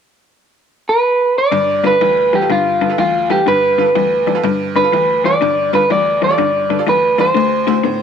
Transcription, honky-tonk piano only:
1.52 1.91 G2 medium
1.84 1.93 F4 medium
1.84 1.93 A4 medium
1.84 1.93 B4 medium
2.01 2.40 D2 medium
2.32 2.37 A4 soft
2.32 2.37 B4 soft
2.41 2.50 F4 soft
2.41 2.50 A4 soft
2.41 2.50 B4 medium
2.50 2.89 G2 medium
2.81 2.85 A4 soft
2.81 2.86 B4 soft
2.90 2.98 F4 medium
2.90 2.98 A4 medium
2.90 2.99 B4 medium
2.98 3.37 D2 medium
3.30 3.38 F4 medium
3.30 3.38 A4 medium
3.30 3.39 B4 medium
3.48 3.86 G2 medium
3.79 3.87 F4 medium
3.79 3.88 A4 medium
3.79 3.88 B4 medium
3.95 4.35 D2 medium
4.26 4.31 A4 soft
4.26 4.31 D5 medium
4.35 4.44 F4 medium
4.35 4.44 A4 medium
4.35 4.44 B4 medium
4.44 4.83 G2 medium
4.76 4.80 A4 soft
4.76 4.80 D5 soft
4.84 4.93 F4 medium
4.84 4.93 A4 medium
4.84 4.93 B4 medium
4.93 5.32 D2 medium
5.25 5.33 F4 medium
5.25 5.34 A4 medium
5.25 5.34 B4 medium
5.42 5.81 G2 medium
5.73 5.81 F4 medium
5.73 5.82 A4 medium
5.73 5.82 B4 medium
5.90 6.29 D2 medium
6.22 6.26 A4 soft
6.22 6.26 B4 soft
6.30 6.39 F4 soft
6.30 6.39 A4 soft
6.30 6.39 D5 medium
6.38 6.77 G2 medium
6.70 6.75 A4 soft
6.70 6.75 B4 soft
6.79 6.87 F4 medium
6.79 6.87 A4 medium
6.79 6.88 D5 medium
6.88 7.27 D2 medium
7.18 7.27 F4 medium
7.18 7.27 A4 medium
7.18 7.27 D5 medium
7.37 7.75 D2 medium
7.67 7.76 E4 medium
7.67 7.76 F#4 medium
7.67 7.76 C5 medium
7.84 8.02 A2 medium

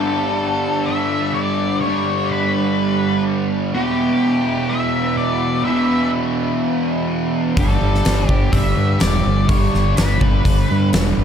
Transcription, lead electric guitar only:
0.00 0.90 A4 medium
0.86 1.34 E5 loud
1.34 1.80 D5 loud
1.81 2.31 C#5 medium
2.29 3.22 B4 medium
3.75 4.73 G4 medium
4.69 5.17 E5 loud
5.17 5.64 D5 medium
5.65 6.10 E5 medium
7.59 8.28 A4 medium
8.28 8.57 G4 medium
8.52 9.00 E5 loud
9.01 9.48 D5 loud
9.49 9.98 C#5 medium
9.96 10.89 B4 medium

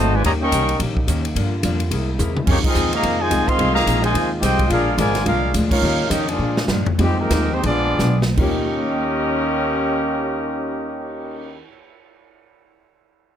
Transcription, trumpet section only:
0.00 0.14 F#4 medium
0.00 0.14 C5 medium
0.00 0.14 D#5 medium
0.00 0.14 A5 loud
0.14 0.25 F4 medium
0.14 0.25 B4 medium
0.14 0.25 D5 medium
0.14 0.25 G#5 loud
0.24 0.32 G4 loud
0.24 0.32 C#5 medium
0.24 0.33 D#5 medium
0.24 0.32 A#5 loud
0.42 0.78 A#4 loud
0.42 0.78 D#5 loud
0.42 0.78 G5 medium
0.42 0.78 C#6 loud
2.49 2.57 A#3 medium
2.49 2.57 D#4 medium
2.49 2.56 G4 medium
2.49 2.57 C#5 medium
2.66 2.91 C4 medium
2.66 2.91 F4 medium
2.66 2.91 G#4 medium
2.66 2.91 D#5 loud
2.94 3.19 G#4 medium
2.94 3.19 D#5 medium
2.94 3.19 F5 medium
2.94 3.19 A#5 loud
3.21 3.48 F4 medium
3.21 3.48 C5 medium
3.21 3.48 D#5 medium
3.21 3.48 G#5 loud
3.48 3.74 G#4 medium
3.48 3.73 D#5 loud
3.48 3.73 F5 loud
3.48 3.76 C6 loud
3.74 4.01 G#4 loud
3.74 4.01 D#5 loud
3.74 4.01 F5 loud
3.74 4.01 A#5 loud
4.03 4.30 F4 medium
4.03 4.29 C5 medium
4.03 4.29 D#5 medium
4.03 4.29 G#5 loud
4.42 4.68 F4 medium
4.42 4.68 C5 medium
4.42 4.68 D#5 medium
4.42 4.68 G5 loud
4.71 4.97 D4 medium
4.71 4.97 G#4 medium
4.71 4.97 A#4 medium
4.71 4.97 F5 loud
4.98 5.24 F4 medium
4.98 5.24 A#4 loud
4.98 5.25 D5 loud
4.98 5.25 G#5 loud
5.26 5.52 D4 medium
5.26 5.52 G#4 medium
5.26 5.52 A#4 medium
5.26 5.52 F5 loud
5.71 6.08 D#4 medium
5.71 6.07 A#4 medium
5.71 6.07 C#5 medium
5.71 6.08 F5 medium
6.11 6.28 C#4 medium
6.11 6.28 G4 medium
6.11 6.28 A#4 medium
6.11 6.28 D#5 medium
6.28 6.66 A#3 medium
6.28 6.66 F4 medium
6.28 6.66 G#4 medium
6.28 6.66 D5 medium
7.01 7.18 G#3 medium
7.01 7.18 C4 medium
7.01 7.18 G4 medium
7.19 7.50 G#3 medium
7.19 7.50 D#4 medium
7.19 7.51 G4 medium
7.19 7.51 A#4 loud
7.51 7.64 G#3 medium
7.51 7.64 D#4 medium
7.51 7.65 G4 medium
7.51 7.64 C5 loud
7.66 8.20 B3 medium
7.66 8.20 F4 medium
7.66 8.20 G#4 medium
7.66 8.19 D5 loud
8.38 11.62 C#4 medium
8.38 11.62 G4 medium
8.38 11.62 A#4 medium
8.38 11.61 D#5 medium

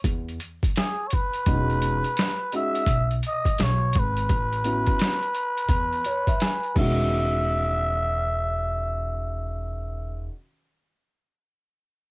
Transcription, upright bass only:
0.04 0.37 E2 medium
1.47 2.01 E1 medium
2.86 3.19 B1 medium
3.59 3.91 B1 medium
3.96 4.27 G#1 medium
4.30 4.83 A1 medium
5.69 6.02 E2 medium
6.76 10.27 E1 medium

